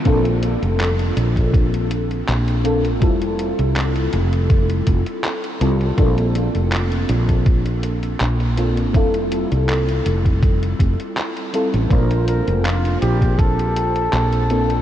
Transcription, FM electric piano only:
X:1
M:4/4
L:1/8
Q:"Swing 16ths" 1/4=81
K:Bblyd
V:1 name="FM electric piano"
[B,CDFA]6- [B,CDFA] [B,CDFA] | [G,CEFA]6- [G,CEFA] [G,CEFA] | [B,CDFA]6- [B,CDFA] [B,CDFA] | [G,CEFA]6- [G,CEFA] [G,CEFA] |
[B,CDFc]6- [B,CDFc] [B,CDFA] |]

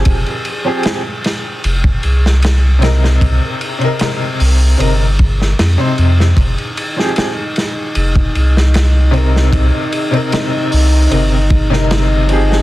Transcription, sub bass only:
X:1
M:4/4
L:1/8
Q:1/4=76
K:Fm
V:1 name="Sub bass" clef=bass
F,,, z3 F,,, C,,3 | C,, z2 C,, G,,, G,,, F,, F,, | F,,, z3 F,,, C,,3 | C,, z2 C,, G,,,4 |]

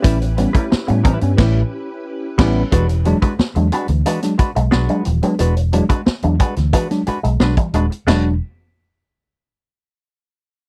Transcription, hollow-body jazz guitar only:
X:1
M:4/4
L:1/16
Q:1/4=90
K:A
V:1 name="Hollow-body jazz guitar"
[=G,CEB] z2 [G,CEB] z2 [G,CEB] z [G,CEB]2 z4 [G,CEB]2 | [G,DFB] z2 [G,DFB] z2 [G,DFB] z [G,DFB] z [G,DFB] z [G,DFB]2 z2 | [G,DFB] z2 [G,DFB] z2 [G,DFB] z [G,DFB] z [G,DFB] z [G,DFB] z [G,DFB] z | [G,DFB] z12 z3 |]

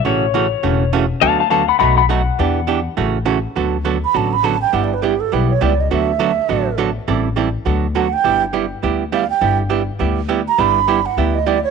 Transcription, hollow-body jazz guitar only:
X:1
M:4/4
L:1/8
Q:"Swing" 1/4=205
K:D
V:1 name="Hollow-body jazz guitar"
[C,E,A,CF] z [C,E,A,CF] z [C,E,A,CF] z [C,E,A,CF] z | [D,F,B,FA] z [D,F,B,FA] z [B,,F,A,^DF] z [B,,F,A,DF] z | [E,B,DG] z [E,B,DG] z [C,E,A,CF] z [C,E,A,CF] z | [D,F,B,FA] z [D,F,B,FA] z [D,F,B,FA] z [D,F,B,FA] z |
[G,B,EG] z [G,B,EG] z [G,B,EG] z [G,B,EG] z | [D,F,B,FA] z [D,F,B,FA] z [D,F,B,FA] z [D,F,B,FA] z | [E,G,=CEA] z [E,G,CEA] z [D,F,B,FA] z [D,F,B,FA] z | [G,B,EG] z [G,B,EG] z [G,B,EG] z [G,B,EG] z |
[G,B,EG] z [G,B,EG] z [G,B,EG] z [G,B,EG] z | [G,B,EG] z [G,B,EG] z [G,B,EG] z [G,B,EG] z |]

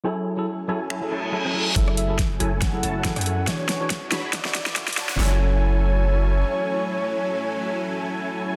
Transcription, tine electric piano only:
X:1
M:4/4
L:1/16
Q:"Swing 16ths" 1/4=140
K:F#m
V:1 name="Tine electric piano"
[F,EGA]3 [F,EGA] z2 [F,EGA] z2 [F,EGA] z2 [F,EGA] z [F,EGA] z | [F,EGA]3 [F,EGA] z2 [F,EGA] z2 [F,EGA] z2 [F,EGA] z [F,EGA] z | [E,DFGc]3 [E,DFGc] z2 [E,DFGc] z2 [D,CEF] z2 [D,CEF] z [D,CEF] z | [F,EAg]16- |
[F,EAg]16 |]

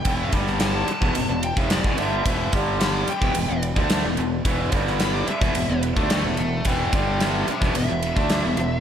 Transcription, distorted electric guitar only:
X:1
M:4/4
L:1/16
Q:1/4=109
K:Em
V:1 name="Distorted electric guitar" clef=bass
[E,,B,,E,]2 [G,,D,G,]4 z [E,,B,,] [E,,B,,] [E,,B,,]2 [=F,,C,=F,]2 [E,,B,,] [G,,D,G,]2 | [E,,B,,E,]2 [G,,D,G,]4 z [E,,B,,] [E,,B,,] [E,,B,,]2 [D,A,D]2 [E,,B,,] [E,,B,,]2 | [E,,B,,E,]2 [G,,D,G,]4 z [E,,B,,] [E,,B,,] [E,,B,,]2 [D,A,D]2 [E,,B,,] [E,,B,,]2 | [E,,B,,E,]2 [G,,D,G,]4 z [E,,B,,] [E,,B,,] [E,,B,,]2 [D,A,D]2 [E,,B,,] [E,,B,,]2 |]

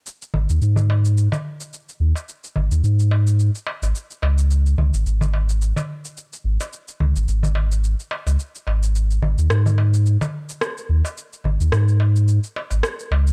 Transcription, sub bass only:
X:1
M:4/4
L:1/16
Q:"Swing 16ths" 1/4=108
K:C#mix
V:1 name="Sub bass" clef=bass
z2 G,,, D,, G,,4- G,, z4 z D,, z | z2 G,,, D,, G,,4- G,, z2 G,,, z2 C,,2- | C,,2 C,, G,,, G,,,4- G,,, z4 z G,,, z | z2 C,, G,,, G,,,4- G,,, z2 C,, z2 G,,,2- |
G,,,2 G,,, D,, G,,4- G,, z4 z D,, z | z2 G,,, D,, G,,4- G,, z2 G,,, z2 C,,2 |]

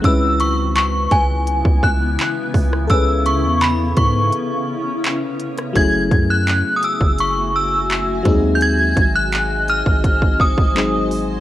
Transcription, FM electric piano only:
X:1
M:4/4
L:1/8
Q:1/4=84
K:F#m
V:1 name="FM electric piano"
[G,CEB]8 | [CGAB]8 | [F,A,CEG]6- [F,A,CEG] [F,G,^B,^DG]- | [F,G,^B,^DG]6 [F,G,B,DG]2 |]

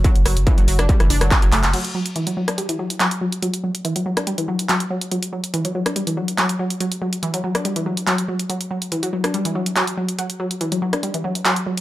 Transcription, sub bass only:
X:1
M:4/4
L:1/16
Q:1/4=142
K:Edor
V:1 name="Sub bass" clef=bass
z F,,, F,,, F,,, z F,,, F,,, F,,, z F,,, F,,, F,,, z F,,, F,,, F,,, | z16 | z16 | z16 |
z16 | z16 | z16 |]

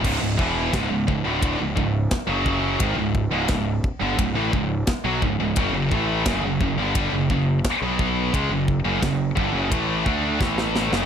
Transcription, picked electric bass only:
X:1
M:4/4
L:1/16
Q:1/4=87
K:C#phr
V:1 name="Picked electric bass" clef=bass
C,,, C,,, E,,,2 C,,, C,,, C,,, D,,,2 C,,, C,,,2 z F,,,3 | G,,, C,,,2 C,,, C,,,2 z =G,,, C,,, A,,, C,,,2 z B,,, C,,, C,,, | F,,, F,,, A,,,2 F,,, F,,, F,,, =G,,,2 F,,, F,,,2 z B,,,3 | C,, F,,,2 F,,, F,,,2 =G,,, F,,, A,,,2 D,,2 A,,,3 F,,, |]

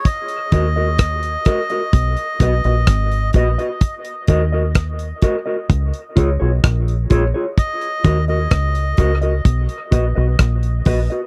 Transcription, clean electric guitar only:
X:1
M:4/4
L:1/16
Q:1/4=64
K:Ebm
V:1 name="Clean electric guitar"
z2 [GBe] [GBe] z2 [GBe] [GBe] z2 [^F=B^d] [FBd] z2 [FBd] [FBd] | z2 [GBe] [GBe] z2 [GBe] [GBe] z2 [FAd] [FAd] z2 [FAd] [FAd] | z2 [GBe] [GBe] z2 [GBe] [GBe] z2 [^F=B^d] [FBd] z2 [FBd] [FBd] |]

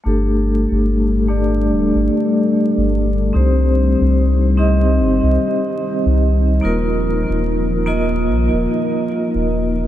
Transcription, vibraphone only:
X:1
M:4/4
L:1/8
Q:"Swing 16ths" 1/4=73
K:Gm
V:1 name="Vibraphone"
[A,DGA]3 [A,DGd] z4 | [CEGc]3 [CEGe] z4 | [B,EFB]3 [B,EFe] z4 |]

